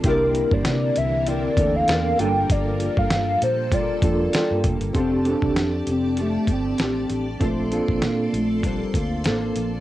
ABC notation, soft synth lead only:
X:1
M:4/4
L:1/16
Q:"Swing 16ths" 1/4=98
K:F
V:1 name="Soft synth lead"
B3 d3 e2 d3 f3 g2 | d3 f f2 c2 d6 z2 | C2 D4 C2 A,2 C2 C3 z | A,2 B,2 B,2 A,2 G,2 B,2 B,3 z |]